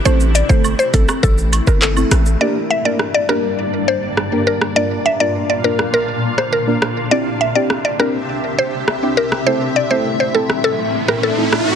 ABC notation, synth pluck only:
X:1
M:4/4
L:1/16
Q:1/4=102
K:Gdor
V:1 name="Synth pluck"
c z d c z c A z A z2 B A3 z | d z e d z d B z3 c z3 B z | d z e d z d B z B z2 c B3 z | d z e d z d B z3 c z3 B z |
c z d c z c A z A z2 B A3 z |]